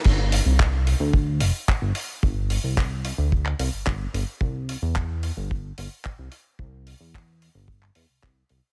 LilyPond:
<<
  \new Staff \with { instrumentName = "Analog synth bass" } { \clef bass \time 4/4 \key c \major \tempo 4 = 110 g,,8. c,4 d,8. f,,16 r8 g,,16 r8 | g,,8. c,4 d,8. c,16 g,,16 g,,16 r16 g,,16 r16 | c,8. e,4 g,,8. g,,16 r8 c,16 r8 | c,8. e,4 g,,8. e,16 c,16 c,16 r16 c,16 r16 | }
  \new DrumStaff \with { instrumentName = "Drums" } \drummode { \time 4/4 <cymc bd>8 hho8 <hc bd>8 hho8 bd8 hho8 <hc bd>8 hho8 | bd8 hho8 <hc bd>8 hho8 bd16 hc16 hho8 <hc bd>8 hho8 | bd8 hho8 <hc bd>8 hho8 bd8 hho8 <hc bd>8 hho8 | bd8 hho8 <hc bd>8 hho8 bd16 hc16 hho8 <hc bd>8 hho8 | }
>>